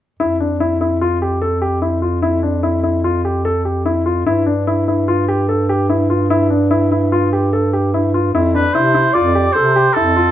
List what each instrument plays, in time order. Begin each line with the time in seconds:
0.19 bass clarinet F2, grand piano E4
0.40 grand piano D4
0.60 grand piano E4
0.81 grand piano E4
1.01 grand piano F4
1.22 grand piano G4
1.42 grand piano A4
1.62 grand piano G4
1.82 grand piano E4
2.02 grand piano F4
2.22 grand piano E4
2.43 grand piano D4
2.63 grand piano E4
2.83 grand piano E4
3.04 grand piano F4
3.25 grand piano G4
3.45 grand piano A4
3.65 grand piano G4
3.86 grand piano E4
4.06 grand piano F4
4.26 bass clarinet G2, grand piano E4
4.46 grand piano D4
4.67 grand piano E4
4.88 grand piano E4
5.08 grand piano F4
5.28 grand piano G4
5.49 grand piano A4
5.69 grand piano G4
5.90 grand piano E4
6.10 grand piano F4
6.30 grand piano E4
6.50 grand piano D4
6.71 grand piano E4
6.92 grand piano E4
7.12 grand piano F4
7.33 grand piano G4
7.53 grand piano A4
7.73 grand piano G4
7.94 grand piano E4
8.14 grand piano F4
8.34 bass clarinet F2, grand piano E4
8.54 grand piano D4, oboe B4
8.73 bass clarinet C3, grand piano E4, oboe C5
8.94 grand piano E4
9.13 bass clarinet F2, grand piano F4, oboe D5
9.35 grand piano G4
9.52 grand piano A4, oboe C5
9.56 bass clarinet C3
9.76 grand piano G4
9.93 bass clarinet F2, grand piano E4, oboe A4
10.16 grand piano F4